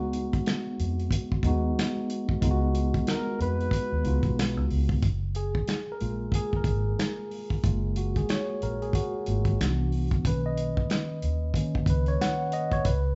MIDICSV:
0, 0, Header, 1, 5, 480
1, 0, Start_track
1, 0, Key_signature, 6, "major"
1, 0, Tempo, 652174
1, 1779, Time_signature, 4, 2, 24, 8
1, 9678, End_track
2, 0, Start_track
2, 0, Title_t, "Flugelhorn"
2, 0, Program_c, 0, 56
2, 2272, Note_on_c, 0, 70, 94
2, 2489, Note_off_c, 0, 70, 0
2, 2514, Note_on_c, 0, 71, 107
2, 3437, Note_off_c, 0, 71, 0
2, 9678, End_track
3, 0, Start_track
3, 0, Title_t, "Tine electric piano"
3, 0, Program_c, 1, 4
3, 0, Note_on_c, 1, 56, 76
3, 0, Note_on_c, 1, 59, 71
3, 0, Note_on_c, 1, 63, 78
3, 0, Note_on_c, 1, 66, 96
3, 19, Control_c, 1, 64, 127
3, 708, Note_off_c, 1, 56, 0
3, 713, Note_off_c, 1, 59, 0
3, 717, Note_off_c, 1, 63, 0
3, 744, Note_off_c, 1, 66, 0
3, 1059, Note_on_c, 1, 56, 84
3, 1067, Note_on_c, 1, 59, 78
3, 1074, Note_on_c, 1, 63, 75
3, 1084, Note_on_c, 1, 66, 91
3, 1700, Note_off_c, 1, 56, 0
3, 1704, Note_off_c, 1, 59, 0
3, 1707, Note_off_c, 1, 63, 0
3, 1712, Note_off_c, 1, 66, 0
3, 1775, Note_on_c, 1, 56, 82
3, 1784, Note_on_c, 1, 59, 70
3, 1789, Note_on_c, 1, 63, 69
3, 1800, Note_on_c, 1, 65, 69
3, 1846, Note_on_c, 1, 66, 93
3, 1847, Note_off_c, 1, 65, 0
3, 2626, Note_off_c, 1, 56, 0
3, 2631, Note_off_c, 1, 59, 0
3, 2633, Note_off_c, 1, 63, 0
3, 2662, Note_off_c, 1, 66, 0
3, 2973, Note_on_c, 1, 56, 69
3, 2981, Note_on_c, 1, 59, 62
3, 2988, Note_on_c, 1, 63, 60
3, 2994, Note_on_c, 1, 65, 75
3, 3617, Note_off_c, 1, 56, 0
3, 3620, Note_off_c, 1, 59, 0
3, 3624, Note_off_c, 1, 63, 0
3, 3627, Note_off_c, 1, 65, 0
3, 3708, Control_c, 1, 64, 0
3, 3848, Control_c, 1, 64, 127
3, 3947, Note_on_c, 1, 68, 91
3, 4315, Note_off_c, 1, 68, 0
3, 4356, Note_on_c, 1, 70, 89
3, 4421, Note_on_c, 1, 56, 51
3, 4427, Note_on_c, 1, 58, 46
3, 4429, Note_on_c, 1, 65, 59
3, 4676, Note_on_c, 1, 68, 99
3, 4677, Note_off_c, 1, 70, 0
3, 4817, Note_off_c, 1, 68, 0
3, 4832, Note_on_c, 1, 70, 80
3, 5049, Note_off_c, 1, 70, 0
3, 5111, Note_off_c, 1, 56, 0
3, 5113, Note_off_c, 1, 58, 0
3, 5114, Note_off_c, 1, 65, 0
3, 5625, Note_on_c, 1, 56, 52
3, 5630, Note_on_c, 1, 58, 50
3, 5633, Note_on_c, 1, 65, 58
3, 5840, Note_off_c, 1, 56, 0
3, 5841, Note_off_c, 1, 58, 0
3, 5869, Note_on_c, 1, 66, 74
3, 5965, Note_off_c, 1, 65, 0
3, 5998, Note_off_c, 1, 66, 0
3, 6013, Note_on_c, 1, 68, 71
3, 6054, Note_off_c, 1, 68, 0
3, 6109, Note_on_c, 1, 73, 88
3, 6351, Note_off_c, 1, 73, 0
3, 6352, Note_on_c, 1, 70, 79
3, 6492, Note_on_c, 1, 68, 85
3, 6493, Note_off_c, 1, 70, 0
3, 6586, Note_off_c, 1, 68, 0
3, 6586, Note_on_c, 1, 66, 85
3, 6831, Note_on_c, 1, 56, 44
3, 6832, Note_on_c, 1, 58, 40
3, 6836, Note_on_c, 1, 65, 45
3, 7042, Note_off_c, 1, 56, 0
3, 7042, Note_off_c, 1, 58, 0
3, 7044, Note_off_c, 1, 65, 0
3, 7068, Note_on_c, 1, 52, 55
3, 7069, Control_c, 1, 64, 0
3, 7072, Note_on_c, 1, 59, 53
3, 7074, Note_on_c, 1, 62, 61
3, 7220, Control_c, 1, 64, 127
3, 7401, Note_off_c, 1, 52, 0
3, 7403, Note_off_c, 1, 59, 0
3, 7404, Note_off_c, 1, 62, 0
3, 7513, Note_off_c, 1, 66, 0
3, 7547, Control_c, 1, 64, 0
3, 7547, Note_on_c, 1, 51, 52
3, 7552, Note_on_c, 1, 58, 44
3, 7556, Note_on_c, 1, 61, 61
3, 7558, Note_on_c, 1, 71, 91
3, 7679, Control_c, 1, 64, 127
3, 7683, Note_off_c, 1, 71, 0
3, 7698, Note_on_c, 1, 75, 90
3, 7914, Note_off_c, 1, 75, 0
3, 8234, Note_off_c, 1, 51, 0
3, 8236, Note_off_c, 1, 58, 0
3, 8238, Note_off_c, 1, 61, 0
3, 8506, Note_on_c, 1, 51, 52
3, 8509, Note_on_c, 1, 58, 49
3, 8512, Note_on_c, 1, 61, 58
3, 8719, Note_off_c, 1, 51, 0
3, 8720, Note_off_c, 1, 58, 0
3, 8722, Note_off_c, 1, 61, 0
3, 8757, Note_on_c, 1, 71, 92
3, 8893, Note_on_c, 1, 73, 92
3, 8896, Note_off_c, 1, 71, 0
3, 8987, Note_off_c, 1, 73, 0
3, 8989, Note_on_c, 1, 78, 104
3, 9225, Note_on_c, 1, 75, 102
3, 9231, Note_off_c, 1, 78, 0
3, 9368, Note_on_c, 1, 73, 99
3, 9370, Note_off_c, 1, 75, 0
3, 9462, Note_on_c, 1, 71, 87
3, 9464, Note_off_c, 1, 73, 0
3, 9469, Control_c, 1, 64, 0
3, 9584, Control_c, 1, 64, 127
3, 9678, Note_off_c, 1, 71, 0
3, 9678, End_track
4, 0, Start_track
4, 0, Title_t, "Fingered electric bass"
4, 0, Program_c, 2, 33
4, 0, Note_on_c, 2, 37, 106
4, 279, Note_off_c, 2, 37, 0
4, 588, Note_on_c, 2, 41, 93
4, 793, Note_off_c, 2, 41, 0
4, 1054, Note_on_c, 2, 39, 87
4, 1265, Note_off_c, 2, 39, 0
4, 1786, Note_on_c, 2, 37, 109
4, 2201, Note_off_c, 2, 37, 0
4, 2505, Note_on_c, 2, 41, 92
4, 2711, Note_off_c, 2, 41, 0
4, 2888, Note_on_c, 2, 39, 78
4, 2969, Note_off_c, 2, 39, 0
4, 2979, Note_on_c, 2, 37, 85
4, 3104, Note_off_c, 2, 37, 0
4, 3118, Note_on_c, 2, 35, 87
4, 3362, Note_off_c, 2, 35, 0
4, 3362, Note_on_c, 2, 37, 87
4, 3446, Note_off_c, 2, 37, 0
4, 3467, Note_on_c, 2, 37, 83
4, 3672, Note_off_c, 2, 37, 0
4, 3704, Note_on_c, 2, 30, 93
4, 4120, Note_off_c, 2, 30, 0
4, 4429, Note_on_c, 2, 34, 83
4, 4633, Note_off_c, 2, 34, 0
4, 4892, Note_on_c, 2, 32, 81
4, 5104, Note_off_c, 2, 32, 0
4, 5626, Note_on_c, 2, 30, 100
4, 6041, Note_off_c, 2, 30, 0
4, 6351, Note_on_c, 2, 34, 82
4, 6554, Note_off_c, 2, 34, 0
4, 6828, Note_on_c, 2, 32, 88
4, 7033, Note_off_c, 2, 32, 0
4, 7074, Note_on_c, 2, 36, 96
4, 7485, Note_off_c, 2, 36, 0
4, 7547, Note_on_c, 2, 35, 105
4, 7962, Note_off_c, 2, 35, 0
4, 8269, Note_on_c, 2, 39, 91
4, 8474, Note_off_c, 2, 39, 0
4, 8735, Note_on_c, 2, 37, 98
4, 8945, Note_off_c, 2, 37, 0
4, 9462, Note_on_c, 2, 37, 110
4, 9678, Note_off_c, 2, 37, 0
4, 9678, End_track
5, 0, Start_track
5, 0, Title_t, "Drums"
5, 97, Note_on_c, 9, 42, 61
5, 171, Note_off_c, 9, 42, 0
5, 245, Note_on_c, 9, 36, 91
5, 248, Note_on_c, 9, 42, 36
5, 319, Note_off_c, 9, 36, 0
5, 321, Note_off_c, 9, 42, 0
5, 341, Note_on_c, 9, 42, 65
5, 348, Note_on_c, 9, 38, 115
5, 351, Note_on_c, 9, 26, 82
5, 414, Note_off_c, 9, 42, 0
5, 421, Note_off_c, 9, 38, 0
5, 425, Note_off_c, 9, 26, 0
5, 585, Note_on_c, 9, 42, 58
5, 659, Note_off_c, 9, 42, 0
5, 732, Note_on_c, 9, 42, 35
5, 805, Note_off_c, 9, 42, 0
5, 814, Note_on_c, 9, 36, 92
5, 824, Note_on_c, 9, 42, 91
5, 887, Note_off_c, 9, 36, 0
5, 898, Note_off_c, 9, 42, 0
5, 969, Note_on_c, 9, 36, 87
5, 1042, Note_off_c, 9, 36, 0
5, 1052, Note_on_c, 9, 36, 97
5, 1062, Note_on_c, 9, 42, 62
5, 1125, Note_off_c, 9, 36, 0
5, 1135, Note_off_c, 9, 42, 0
5, 1317, Note_on_c, 9, 38, 105
5, 1317, Note_on_c, 9, 42, 89
5, 1320, Note_on_c, 9, 26, 84
5, 1391, Note_off_c, 9, 38, 0
5, 1391, Note_off_c, 9, 42, 0
5, 1394, Note_off_c, 9, 26, 0
5, 1544, Note_on_c, 9, 42, 64
5, 1618, Note_off_c, 9, 42, 0
5, 1684, Note_on_c, 9, 36, 91
5, 1757, Note_off_c, 9, 36, 0
5, 1782, Note_on_c, 9, 36, 106
5, 1784, Note_on_c, 9, 42, 82
5, 1855, Note_off_c, 9, 36, 0
5, 1858, Note_off_c, 9, 42, 0
5, 2022, Note_on_c, 9, 42, 65
5, 2095, Note_off_c, 9, 42, 0
5, 2166, Note_on_c, 9, 36, 92
5, 2173, Note_on_c, 9, 42, 37
5, 2240, Note_off_c, 9, 36, 0
5, 2247, Note_off_c, 9, 42, 0
5, 2260, Note_on_c, 9, 42, 74
5, 2267, Note_on_c, 9, 38, 109
5, 2270, Note_on_c, 9, 26, 83
5, 2334, Note_off_c, 9, 42, 0
5, 2341, Note_off_c, 9, 38, 0
5, 2344, Note_off_c, 9, 26, 0
5, 2507, Note_on_c, 9, 42, 55
5, 2580, Note_off_c, 9, 42, 0
5, 2653, Note_on_c, 9, 42, 33
5, 2727, Note_off_c, 9, 42, 0
5, 2732, Note_on_c, 9, 36, 94
5, 2746, Note_on_c, 9, 42, 85
5, 2805, Note_off_c, 9, 36, 0
5, 2819, Note_off_c, 9, 42, 0
5, 2978, Note_on_c, 9, 42, 58
5, 3052, Note_off_c, 9, 42, 0
5, 3113, Note_on_c, 9, 36, 97
5, 3116, Note_on_c, 9, 42, 35
5, 3187, Note_off_c, 9, 36, 0
5, 3190, Note_off_c, 9, 42, 0
5, 3233, Note_on_c, 9, 38, 104
5, 3233, Note_on_c, 9, 42, 96
5, 3236, Note_on_c, 9, 26, 85
5, 3307, Note_off_c, 9, 38, 0
5, 3307, Note_off_c, 9, 42, 0
5, 3310, Note_off_c, 9, 26, 0
5, 3463, Note_on_c, 9, 46, 46
5, 3537, Note_off_c, 9, 46, 0
5, 3600, Note_on_c, 9, 36, 89
5, 3674, Note_off_c, 9, 36, 0
5, 3698, Note_on_c, 9, 42, 76
5, 3699, Note_on_c, 9, 36, 101
5, 3772, Note_off_c, 9, 36, 0
5, 3772, Note_off_c, 9, 42, 0
5, 3936, Note_on_c, 9, 42, 60
5, 4010, Note_off_c, 9, 42, 0
5, 4083, Note_on_c, 9, 36, 88
5, 4157, Note_off_c, 9, 36, 0
5, 4177, Note_on_c, 9, 42, 68
5, 4184, Note_on_c, 9, 38, 94
5, 4187, Note_on_c, 9, 26, 83
5, 4250, Note_off_c, 9, 42, 0
5, 4257, Note_off_c, 9, 38, 0
5, 4261, Note_off_c, 9, 26, 0
5, 4420, Note_on_c, 9, 42, 53
5, 4493, Note_off_c, 9, 42, 0
5, 4650, Note_on_c, 9, 36, 92
5, 4664, Note_on_c, 9, 42, 80
5, 4724, Note_off_c, 9, 36, 0
5, 4738, Note_off_c, 9, 42, 0
5, 4805, Note_on_c, 9, 36, 77
5, 4879, Note_off_c, 9, 36, 0
5, 4888, Note_on_c, 9, 36, 95
5, 4892, Note_on_c, 9, 42, 59
5, 4962, Note_off_c, 9, 36, 0
5, 4966, Note_off_c, 9, 42, 0
5, 5147, Note_on_c, 9, 42, 87
5, 5148, Note_on_c, 9, 38, 102
5, 5151, Note_on_c, 9, 26, 81
5, 5221, Note_off_c, 9, 38, 0
5, 5221, Note_off_c, 9, 42, 0
5, 5224, Note_off_c, 9, 26, 0
5, 5382, Note_on_c, 9, 46, 45
5, 5456, Note_off_c, 9, 46, 0
5, 5522, Note_on_c, 9, 36, 79
5, 5596, Note_off_c, 9, 36, 0
5, 5621, Note_on_c, 9, 36, 106
5, 5622, Note_on_c, 9, 42, 83
5, 5694, Note_off_c, 9, 36, 0
5, 5696, Note_off_c, 9, 42, 0
5, 5858, Note_on_c, 9, 42, 66
5, 5932, Note_off_c, 9, 42, 0
5, 6006, Note_on_c, 9, 36, 86
5, 6011, Note_on_c, 9, 42, 39
5, 6080, Note_off_c, 9, 36, 0
5, 6084, Note_off_c, 9, 42, 0
5, 6102, Note_on_c, 9, 42, 74
5, 6109, Note_on_c, 9, 38, 102
5, 6112, Note_on_c, 9, 26, 82
5, 6175, Note_off_c, 9, 42, 0
5, 6182, Note_off_c, 9, 38, 0
5, 6185, Note_off_c, 9, 26, 0
5, 6344, Note_on_c, 9, 42, 57
5, 6418, Note_off_c, 9, 42, 0
5, 6493, Note_on_c, 9, 42, 33
5, 6566, Note_off_c, 9, 42, 0
5, 6575, Note_on_c, 9, 36, 94
5, 6587, Note_on_c, 9, 42, 86
5, 6649, Note_off_c, 9, 36, 0
5, 6661, Note_off_c, 9, 42, 0
5, 6818, Note_on_c, 9, 42, 64
5, 6892, Note_off_c, 9, 42, 0
5, 6956, Note_on_c, 9, 36, 90
5, 6958, Note_on_c, 9, 42, 35
5, 7029, Note_off_c, 9, 36, 0
5, 7031, Note_off_c, 9, 42, 0
5, 7072, Note_on_c, 9, 38, 95
5, 7072, Note_on_c, 9, 42, 87
5, 7075, Note_on_c, 9, 26, 85
5, 7145, Note_off_c, 9, 38, 0
5, 7145, Note_off_c, 9, 42, 0
5, 7149, Note_off_c, 9, 26, 0
5, 7303, Note_on_c, 9, 46, 43
5, 7377, Note_off_c, 9, 46, 0
5, 7444, Note_on_c, 9, 36, 89
5, 7445, Note_on_c, 9, 42, 34
5, 7517, Note_off_c, 9, 36, 0
5, 7519, Note_off_c, 9, 42, 0
5, 7543, Note_on_c, 9, 36, 108
5, 7545, Note_on_c, 9, 42, 81
5, 7617, Note_off_c, 9, 36, 0
5, 7618, Note_off_c, 9, 42, 0
5, 7783, Note_on_c, 9, 42, 66
5, 7856, Note_off_c, 9, 42, 0
5, 7928, Note_on_c, 9, 36, 91
5, 8001, Note_off_c, 9, 36, 0
5, 8022, Note_on_c, 9, 42, 74
5, 8029, Note_on_c, 9, 38, 109
5, 8032, Note_on_c, 9, 26, 89
5, 8096, Note_off_c, 9, 42, 0
5, 8103, Note_off_c, 9, 38, 0
5, 8106, Note_off_c, 9, 26, 0
5, 8261, Note_on_c, 9, 42, 55
5, 8334, Note_off_c, 9, 42, 0
5, 8493, Note_on_c, 9, 36, 93
5, 8504, Note_on_c, 9, 42, 88
5, 8566, Note_off_c, 9, 36, 0
5, 8578, Note_off_c, 9, 42, 0
5, 8648, Note_on_c, 9, 36, 85
5, 8721, Note_off_c, 9, 36, 0
5, 8731, Note_on_c, 9, 36, 92
5, 8738, Note_on_c, 9, 42, 65
5, 8804, Note_off_c, 9, 36, 0
5, 8812, Note_off_c, 9, 42, 0
5, 8878, Note_on_c, 9, 42, 33
5, 8951, Note_off_c, 9, 42, 0
5, 8990, Note_on_c, 9, 38, 105
5, 8990, Note_on_c, 9, 42, 93
5, 8993, Note_on_c, 9, 26, 80
5, 9063, Note_off_c, 9, 38, 0
5, 9063, Note_off_c, 9, 42, 0
5, 9067, Note_off_c, 9, 26, 0
5, 9215, Note_on_c, 9, 42, 62
5, 9289, Note_off_c, 9, 42, 0
5, 9358, Note_on_c, 9, 36, 91
5, 9361, Note_on_c, 9, 42, 36
5, 9432, Note_off_c, 9, 36, 0
5, 9435, Note_off_c, 9, 42, 0
5, 9456, Note_on_c, 9, 42, 92
5, 9458, Note_on_c, 9, 36, 117
5, 9530, Note_off_c, 9, 42, 0
5, 9532, Note_off_c, 9, 36, 0
5, 9678, End_track
0, 0, End_of_file